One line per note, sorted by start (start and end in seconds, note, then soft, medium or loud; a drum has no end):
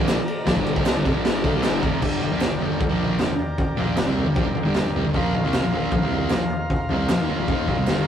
0.00 0.17 A#1 loud
0.00 0.17 A#2 medium
0.00 0.17 F3 loud
0.00 0.18 A#3 loud
0.00 0.82 A#4 medium
0.00 0.82 D5 medium
0.08 snare loud
0.08 clap loud
0.08 ride loud
0.17 muted distorted electric guitar stroke medium
0.17 muted picked electric bass stroke soft
0.28 ride medium
0.46 0.56 A#1 loud
0.46 0.56 A#2 loud
0.46 0.56 F3 loud
0.46 kick loud
0.46 snare loud
0.46 ride loud
0.56 0.75 G1 loud
0.56 0.76 G2 loud
0.56 0.75 D3 loud
0.56 0.75 G3 loud
0.56 kick medium
0.67 ride medium
0.76 0.95 C2 medium
0.76 0.95 C3 loud
0.76 0.95 G3 loud
0.76 0.96 C4 medium
0.76 kick loud
0.85 1.98 A#4 medium
0.85 2.00 D5 medium
0.85 2.01 A5 medium
0.85 snare loud
0.85 clap loud
0.85 ride loud
0.96 1.05 G1 loud
0.96 1.05 G2 medium
0.96 1.05 D3 medium
1.05 1.15 F1 medium
1.05 1.15 F2 medium
1.05 1.14 C3 medium
1.05 kick loud
1.05 ride medium
1.14 1.25 A#1 medium
1.14 1.24 A#2 loud
1.14 1.24 F3 loud
1.25 1.43 G1 loud
1.25 1.44 G2 medium
1.25 1.44 D3 loud
1.25 1.44 G3 loud
1.25 snare loud
1.25 ride loud
1.44 1.54 D2 medium
1.44 1.54 D3 medium
1.44 1.54 A3 loud
1.44 1.63 F5 medium
1.44 kick loud
1.44 ride medium
1.54 1.64 C2 medium
1.54 1.63 C3 medium
1.54 1.64 G3 loud
1.62 1.82 G1 loud
1.62 1.82 G2 medium
1.62 1.83 D3 medium
1.62 1.84 G3 medium
1.62 1.81 G5 medium
1.62 snare loud
1.62 clap medium
1.62 ride medium
1.82 2.01 F1 medium
1.82 2.02 F2 medium
1.82 2.02 C3 medium
1.82 2.03 F3 medium
1.82 2.01 A#5 medium
1.82 kick loud
1.82 ride medium
2.00 2.21 G1 medium
2.00 2.21 G2 medium
2.00 2.21 D3 medium
2.00 2.22 G3 loud
2.00 5.09 A#4 medium
2.00 5.10 D5 medium
2.00 5.10 G5 medium
2.00 kick loud
2.00 floor tom medium
2.00 crash loud
2.22 2.31 G1 medium
2.22 2.32 G2 medium
2.22 2.31 D3 medium
2.22 floor tom medium
2.32 2.50 A#1 medium
2.32 2.51 A#2 medium
2.32 2.51 F3 medium
2.32 2.51 A#3 medium
2.41 snare loud
2.41 clap loud
2.41 floor tom medium
2.51 2.61 G1 medium
2.51 2.59 G2 medium
2.51 2.60 D3 medium
2.60 2.80 G1 medium
2.60 2.78 G2 medium
2.60 2.78 D3 medium
2.60 2.80 G3 loud
2.60 floor tom medium
2.79 2.89 G1 medium
2.79 2.90 G2 medium
2.79 2.88 D3 medium
2.79 kick loud
2.79 floor tom medium
2.89 3.17 A#1 loud
2.89 3.18 A#2 medium
2.89 3.18 F3 loud
2.89 3.19 A#3 loud
3.00 floor tom medium
3.18 3.29 G1 medium
3.18 3.28 G2 medium
3.18 3.29 D3 loud
3.18 snare loud
3.18 clap medium
3.18 floor tom medium
3.39 floor tom medium
3.58 kick loud
3.58 floor tom loud
3.77 3.97 A#1 medium
3.77 3.96 A#2 medium
3.77 3.96 F3 medium
3.77 3.97 A#3 loud
3.77 floor tom medium
3.96 4.06 G1 medium
3.96 4.07 G2 medium
3.96 4.06 D3 medium
3.96 snare loud
3.96 clap medium
3.96 floor tom medium
4.06 4.25 C2 medium
4.06 4.26 C3 medium
4.06 4.26 G3 medium
4.06 4.26 C4 medium
4.16 floor tom medium
4.27 4.36 G1 medium
4.27 4.37 G2 medium
4.27 4.36 D3 medium
4.35 4.46 A#1 loud
4.35 4.46 A#2 medium
4.35 4.46 F3 loud
4.35 kick loud
4.35 floor tom medium
4.46 4.56 G1 medium
4.46 4.55 G2 medium
4.46 4.56 D3 medium
4.55 muted distorted electric guitar stroke soft
4.55 muted picked electric bass stroke soft
4.55 floor tom medium
4.65 4.84 G1 loud
4.65 4.84 G2 loud
4.65 4.84 D3 loud
4.65 4.85 G3 loud
4.75 snare loud
4.75 clap medium
4.75 floor tom medium
4.85 4.95 G1 medium
4.85 4.95 G2 medium
4.85 4.95 D3 medium
4.95 5.05 C2 loud
4.95 5.04 C3 medium
4.95 5.05 G3 loud
4.95 floor tom medium
5.05 5.14 G1 medium
5.05 5.15 G2 medium
5.05 5.14 D3 medium
5.14 5.33 A#1 medium
5.14 5.34 A#2 medium
5.14 5.34 F3 loud
5.14 5.34 A#3 loud
5.14 8.07 F4 medium
5.14 8.07 A#4 medium
5.14 8.07 F5 medium
5.14 kick loud
5.14 floor tom medium
5.34 5.44 A#1 medium
5.34 5.44 A#2 medium
5.34 5.44 F3 medium
5.34 floor tom medium
5.44 5.62 C2 loud
5.44 5.63 C3 medium
5.44 5.63 G3 medium
5.44 5.64 C4 medium
5.53 snare loud
5.53 clap medium
5.53 floor tom medium
5.63 5.72 A#1 medium
5.63 5.71 A#2 medium
5.63 5.72 F3 medium
5.72 5.91 A#1 loud
5.72 5.91 A#2 medium
5.72 5.92 F3 medium
5.72 5.93 A#3 medium
5.72 floor tom medium
5.92 6.01 A#1 medium
5.92 6.02 A#2 medium
5.92 6.02 F3 medium
5.92 kick loud
5.92 floor tom medium
6.02 6.30 C2 loud
6.02 6.31 C3 loud
6.02 6.31 G3 loud
6.02 6.32 C4 loud
6.11 floor tom medium
6.30 6.41 A#1 medium
6.30 6.41 A#2 medium
6.30 6.42 F3 loud
6.30 snare loud
6.30 clap loud
6.30 floor tom medium
6.50 floor tom medium
6.70 kick loud
6.70 floor tom medium
6.89 7.09 C2 medium
6.89 7.09 C3 medium
6.89 7.09 G3 medium
6.89 7.09 C4 loud
6.89 floor tom medium
7.09 7.19 A#1 medium
7.09 7.20 A#2 medium
7.09 7.20 F3 medium
7.09 snare loud
7.09 clap loud
7.09 floor tom medium
7.20 7.29 D#2 medium
7.20 7.28 D#3 medium
7.20 7.29 A#3 medium
7.29 7.38 D#2 medium
7.29 7.38 D#3 medium
7.29 7.39 A#3 medium
7.29 floor tom medium
7.39 7.47 A#1 medium
7.39 7.48 A#2 medium
7.39 7.48 F3 loud
7.48 7.66 D#2 medium
7.48 7.67 D#3 medium
7.48 7.68 A#3 medium
7.48 7.69 D#4 medium
7.48 kick loud
7.48 floor tom medium
7.67 7.76 A#1 loud
7.67 7.77 A#2 medium
7.67 7.78 F3 medium
7.67 kick medium
7.67 floor tom medium
7.77 7.86 C2 loud
7.77 7.87 C3 medium
7.77 7.87 G3 medium
7.87 8.05 G1 medium
7.87 8.06 G2 medium
7.87 8.06 D3 medium
7.87 8.07 G3 loud
7.87 snare loud
7.87 clap medium
7.87 floor tom medium